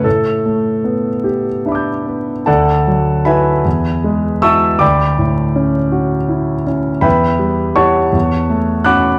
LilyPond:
\new Staff \with { instrumentName = "Grand piano" } { \time 6/8 \key d \major \tempo 4. = 52 << { a'4. r8 <e'' b'' d''' g'''>4 | <a' d'' fis'' a''>4 <b' e'' gis'' b''>4. <e'' a'' cis''' e'''>8 | <d'' g'' b'' d'''>2~ <d'' g'' b'' d'''>8 r8 | <b' e'' g'' b''>4 <cis'' fis'' a'' cis'''>4. <fis'' b'' d''' fis'''>8 | } \\ { a,8 a8 b8 g'8 d'8 b8 | d,8 fis8 <e' fis'>8 e,8 gis8 <e' fis'>8 | d,8 a,8 cis'8 fis'8 e'8 cis'8 | e,8 g8 <e' g'>8 e,8 a8 <cis' fis'>8 | } >> }